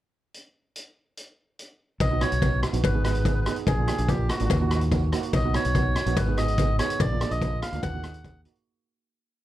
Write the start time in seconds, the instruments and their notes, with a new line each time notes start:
0.34 closed hi-hat
0.76 closed hi-hat
1.17 closed hi-hat
1.59 closed hi-hat
2.00 fingered electric bass B1, melodica D#5, kick, closed hi-hat, cowbell
2.11 steel pan B3 D#4 F#4
2.21 steel pan B3 D#4 F#4, melodica C#5, cross-stick, closed hi-hat
2.32 fingered electric bass B1, closed hi-hat
2.42 steel pan B3 D#4 F#4, kick, closed hi-hat, cowbell
2.63 cross-stick, closed hi-hat
2.73 fingered electric bass A#1, steel pan B3 D#4 F#4, closed hi-hat
2.84 fingered electric bass G#1, melodica B4, kick, closed hi-hat, cowbell
2.94 steel pan B3 D#4 G#4
3.04 steel pan B3 D#4 G#4, melodica B4, cross-stick, closed hi-hat
3.12 melodica B4, closed hi-hat
3.20 melodica B4
3.25 steel pan B3 D#4 G#4, melodica B4, kick, closed hi-hat, cowbell
3.34 melodica B4
3.41 melodica B4
3.46 steel pan B3 D#4 G#4, melodica B4, cross-stick, closed hi-hat
3.56 closed hi-hat
3.67 fingered electric bass A#1, melodica G#4, kick, closed hi-hat, cowbell
3.78 steel pan A#3 D4 F4
3.87 steel pan A#3 D4 G4, cross-stick, closed hi-hat
3.98 fingered electric bass A#1, closed hi-hat
4.08 steel pan A#3 D4 F4, melodica G4, kick, closed hi-hat, cowbell
4.29 melodica F#4, cross-stick, closed hi-hat
4.37 fingered electric bass G#1, steel pan A#3, melodica F#4, closed hi-hat
4.41 steel pan D4 F4, melodica F#4
4.50 fingered electric bass D#2, melodica F#4, kick, closed hi-hat, cowbell
4.60 steel pan A#3 D#4 F#4, melodica F#4
4.67 melodica F#4, cross-stick, closed hi-hat
4.71 steel pan A#3 D#4 F#4, melodica F#4
4.81 closed hi-hat
4.91 steel pan A#3 D#4 F#4, kick, closed hi-hat, cowbell
5.12 steel pan A#3 D#4 F#4, cross-stick, closed hi-hat
5.23 closed hi-hat
5.33 fingered electric bass B1, melodica D#5, kick, closed hi-hat, cowbell
5.45 steel pan B3 D#4 F#4
5.54 steel pan B3 D#4 F#4, melodica C#5, cross-stick, closed hi-hat
5.65 fingered electric bass B1, closed hi-hat
5.75 steel pan B3 D#4 F#4, kick, closed hi-hat, cowbell
5.96 cross-stick, closed hi-hat
6.06 fingered electric bass A#1, steel pan B3 D#4 F#4, closed hi-hat
6.17 fingered electric bass G#1, melodica B4, kick, closed hi-hat, cowbell
6.27 steel pan B3 D#4 G#4
6.37 steel pan B3 D#4 G#4, melodica D#5, cross-stick, closed hi-hat
6.48 closed hi-hat
6.58 steel pan B3 D#4 G#4, kick, closed hi-hat, cowbell
6.79 steel pan B3 D#4 G#4, melodica C#5, cross-stick, closed hi-hat
6.90 closed hi-hat
7.00 fingered electric bass A#1, melodica D5, kick, closed hi-hat, cowbell
7.12 steel pan A#3 D4 F4
7.21 steel pan A#3 D4 G#4, cross-stick, closed hi-hat
7.31 fingered electric bass A#1, melodica D#5, closed hi-hat
7.42 steel pan A#3 D4 F4, kick, closed hi-hat, cowbell
7.62 melodica F5, cross-stick, closed hi-hat
7.73 fingered electric bass D2, steel pan A#3 D4 F4, closed hi-hat
7.82 fingered electric bass D#2, melodica F#5, kick, closed hi-hat, cowbell
7.94 steel pan A#3 D#4 F#4
8.04 steel pan A#3 D#4 G#4, cross-stick, closed hi-hat
8.14 closed hi-hat
8.24 steel pan A#3 D#4 G#4, kick, closed hi-hat, cowbell
8.45 steel pan A#3 D#4 F#4, closed hi-hat
8.55 closed hi-hat